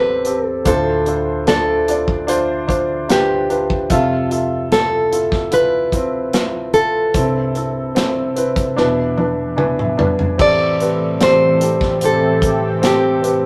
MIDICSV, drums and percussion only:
0, 0, Header, 1, 2, 480
1, 0, Start_track
1, 0, Key_signature, 0, "minor"
1, 0, Tempo, 810811
1, 390, Time_signature, 4, 2, 24, 8
1, 7967, End_track
2, 0, Start_track
2, 0, Title_t, "Drums"
2, 147, Note_on_c, 9, 42, 47
2, 207, Note_off_c, 9, 42, 0
2, 387, Note_on_c, 9, 42, 66
2, 389, Note_on_c, 9, 36, 80
2, 446, Note_off_c, 9, 42, 0
2, 448, Note_off_c, 9, 36, 0
2, 629, Note_on_c, 9, 42, 44
2, 688, Note_off_c, 9, 42, 0
2, 871, Note_on_c, 9, 42, 64
2, 875, Note_on_c, 9, 38, 75
2, 930, Note_off_c, 9, 42, 0
2, 934, Note_off_c, 9, 38, 0
2, 1114, Note_on_c, 9, 42, 60
2, 1174, Note_off_c, 9, 42, 0
2, 1230, Note_on_c, 9, 36, 67
2, 1289, Note_off_c, 9, 36, 0
2, 1351, Note_on_c, 9, 42, 71
2, 1411, Note_off_c, 9, 42, 0
2, 1590, Note_on_c, 9, 36, 65
2, 1599, Note_on_c, 9, 42, 49
2, 1650, Note_off_c, 9, 36, 0
2, 1658, Note_off_c, 9, 42, 0
2, 1833, Note_on_c, 9, 42, 71
2, 1837, Note_on_c, 9, 38, 77
2, 1892, Note_off_c, 9, 42, 0
2, 1897, Note_off_c, 9, 38, 0
2, 2073, Note_on_c, 9, 42, 49
2, 2132, Note_off_c, 9, 42, 0
2, 2191, Note_on_c, 9, 36, 64
2, 2250, Note_off_c, 9, 36, 0
2, 2308, Note_on_c, 9, 42, 65
2, 2311, Note_on_c, 9, 36, 78
2, 2367, Note_off_c, 9, 42, 0
2, 2370, Note_off_c, 9, 36, 0
2, 2553, Note_on_c, 9, 42, 45
2, 2612, Note_off_c, 9, 42, 0
2, 2793, Note_on_c, 9, 42, 67
2, 2797, Note_on_c, 9, 38, 77
2, 2852, Note_off_c, 9, 42, 0
2, 2856, Note_off_c, 9, 38, 0
2, 3035, Note_on_c, 9, 42, 60
2, 3094, Note_off_c, 9, 42, 0
2, 3149, Note_on_c, 9, 36, 70
2, 3154, Note_on_c, 9, 38, 26
2, 3208, Note_off_c, 9, 36, 0
2, 3214, Note_off_c, 9, 38, 0
2, 3267, Note_on_c, 9, 42, 75
2, 3326, Note_off_c, 9, 42, 0
2, 3507, Note_on_c, 9, 36, 64
2, 3510, Note_on_c, 9, 42, 50
2, 3566, Note_off_c, 9, 36, 0
2, 3570, Note_off_c, 9, 42, 0
2, 3750, Note_on_c, 9, 42, 73
2, 3754, Note_on_c, 9, 38, 81
2, 3809, Note_off_c, 9, 42, 0
2, 3814, Note_off_c, 9, 38, 0
2, 3988, Note_on_c, 9, 42, 49
2, 4047, Note_off_c, 9, 42, 0
2, 4228, Note_on_c, 9, 42, 63
2, 4229, Note_on_c, 9, 36, 74
2, 4287, Note_off_c, 9, 42, 0
2, 4288, Note_off_c, 9, 36, 0
2, 4471, Note_on_c, 9, 42, 45
2, 4530, Note_off_c, 9, 42, 0
2, 4713, Note_on_c, 9, 42, 63
2, 4717, Note_on_c, 9, 38, 76
2, 4773, Note_off_c, 9, 42, 0
2, 4776, Note_off_c, 9, 38, 0
2, 4952, Note_on_c, 9, 42, 57
2, 5012, Note_off_c, 9, 42, 0
2, 5069, Note_on_c, 9, 36, 70
2, 5071, Note_on_c, 9, 42, 41
2, 5128, Note_off_c, 9, 36, 0
2, 5130, Note_off_c, 9, 42, 0
2, 5195, Note_on_c, 9, 38, 41
2, 5254, Note_off_c, 9, 38, 0
2, 5432, Note_on_c, 9, 48, 53
2, 5492, Note_off_c, 9, 48, 0
2, 5671, Note_on_c, 9, 47, 62
2, 5730, Note_off_c, 9, 47, 0
2, 5797, Note_on_c, 9, 45, 59
2, 5857, Note_off_c, 9, 45, 0
2, 5913, Note_on_c, 9, 43, 73
2, 5973, Note_off_c, 9, 43, 0
2, 6032, Note_on_c, 9, 43, 61
2, 6091, Note_off_c, 9, 43, 0
2, 6153, Note_on_c, 9, 36, 84
2, 6153, Note_on_c, 9, 49, 71
2, 6212, Note_off_c, 9, 36, 0
2, 6213, Note_off_c, 9, 49, 0
2, 6396, Note_on_c, 9, 42, 46
2, 6455, Note_off_c, 9, 42, 0
2, 6634, Note_on_c, 9, 42, 68
2, 6638, Note_on_c, 9, 38, 82
2, 6693, Note_off_c, 9, 42, 0
2, 6697, Note_off_c, 9, 38, 0
2, 6874, Note_on_c, 9, 42, 63
2, 6933, Note_off_c, 9, 42, 0
2, 6991, Note_on_c, 9, 36, 74
2, 6999, Note_on_c, 9, 38, 29
2, 7051, Note_off_c, 9, 36, 0
2, 7058, Note_off_c, 9, 38, 0
2, 7111, Note_on_c, 9, 42, 75
2, 7170, Note_off_c, 9, 42, 0
2, 7352, Note_on_c, 9, 36, 74
2, 7356, Note_on_c, 9, 42, 55
2, 7412, Note_off_c, 9, 36, 0
2, 7416, Note_off_c, 9, 42, 0
2, 7595, Note_on_c, 9, 42, 79
2, 7600, Note_on_c, 9, 38, 83
2, 7654, Note_off_c, 9, 42, 0
2, 7659, Note_off_c, 9, 38, 0
2, 7838, Note_on_c, 9, 42, 52
2, 7897, Note_off_c, 9, 42, 0
2, 7967, End_track
0, 0, End_of_file